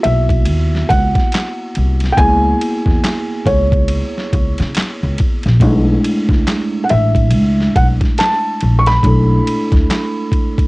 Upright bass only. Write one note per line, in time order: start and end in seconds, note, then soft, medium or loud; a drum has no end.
0.05 0.49 B1 medium
0.49 0.81 D#2 loud
0.91 1.11 C#2 medium
1.77 2.10 C2 medium
2.18 2.52 C#2 loud
2.87 3.00 E2 loud
3.47 4.01 C#2 medium
4.34 4.54 C#2 medium
4.60 4.72 C#3 loud
4.77 muted upright bass stroke soft
5.03 5.15 C#2 medium
5.46 5.61 A#1 medium
5.61 5.95 B1 loud
6.30 6.43 C#2 medium
6.91 7.34 A1 loud
7.34 7.67 C#2 loud
7.77 7.97 B1 medium
8.63 8.96 A#1 medium
9.04 9.38 B1 loud
9.73 9.86 D2 medium